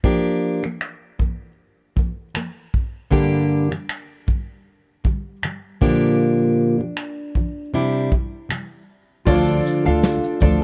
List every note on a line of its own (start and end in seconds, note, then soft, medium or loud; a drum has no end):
0.04 0.62 F3 medium
0.04 0.64 A#3 medium
0.04 0.64 D4 medium
0.04 0.64 G4 medium
0.04 kick medium
0.63 0.93 F3 soft
0.63 0.95 A#3 medium
0.63 finger snap soft
0.81 finger snap medium
1.19 1.51 F3 medium
1.19 1.52 A#3 medium
1.19 kick medium
1.96 2.28 F3 medium
1.96 2.29 A#3 medium
1.96 kick medium
2.35 2.66 F3 medium
2.35 2.67 A#3 medium
2.35 finger snap loud
2.74 kick medium
3.10 3.69 G2 medium
3.10 3.71 D3 medium
3.10 3.71 G3 medium
3.10 3.72 A#3 medium
3.10 3.72 D4 medium
3.10 3.72 G4 medium
3.10 kick medium
3.70 4.01 G2 soft
3.70 4.02 D3 medium
3.70 4.02 G3 soft
3.70 finger snap soft
3.89 finger snap medium
4.27 4.59 G2 soft
4.27 4.59 D3 medium
4.27 4.60 G3 medium
4.27 kick medium
5.04 5.36 G2 medium
5.04 5.36 D3 medium
5.04 5.37 G3 medium
5.04 kick medium
5.43 5.74 G2 medium
5.43 5.75 D3 medium
5.43 5.76 G3 medium
5.43 finger snap loud
5.81 6.78 A#2 medium
5.81 6.79 D3 medium
5.81 6.79 F3 medium
5.81 6.79 A#3 medium
5.81 7.74 D4 medium
5.81 6.84 G4 medium
5.81 kick medium
6.79 7.09 A#2 soft
6.79 7.09 D3 soft
6.79 7.10 F3 soft
6.97 finger snap medium
7.35 7.66 A#2 medium
7.35 7.67 D3 medium
7.35 7.67 F3 medium
7.35 kick medium
7.74 8.11 C3 medium
7.74 8.12 G3 medium
7.74 8.12 D4 medium
7.74 8.12 E4 medium
7.74 8.13 G4 medium
8.12 8.44 G3 medium
8.12 kick medium
8.49 8.81 C3 medium
8.49 8.82 G3 medium
8.49 finger snap loud
9.25 9.58 D2 loud
9.25 9.86 D3 medium
9.25 9.86 F3 medium
9.25 9.86 D4 medium
9.25 10.48 F4 medium
9.25 9.86 F4 medium
9.25 10.48 A4 medium
9.25 9.84 A4 loud
9.25 9.34 C#5 medium
9.25 9.63 D5 medium
9.25 kick loud
9.25 crash medium
9.34 10.52 D5 medium
9.47 shaker medium
9.65 tambourine medium
9.65 shaker medium
9.86 10.17 D2 medium
9.86 10.41 D4 medium
9.86 10.41 F4 medium
9.86 10.41 A4 medium
9.86 10.23 F5 medium
9.86 shaker soft
10.03 snare loud
10.03 tambourine medium
10.03 shaker medium
10.24 shaker medium
10.40 10.64 D2 loud
10.40 10.62 F3 medium
10.40 10.63 D4 medium
10.40 10.62 F4 medium
10.40 10.61 A4 medium
10.40 10.62 D5 medium
10.40 kick medium
10.40 tambourine soft
10.40 shaker medium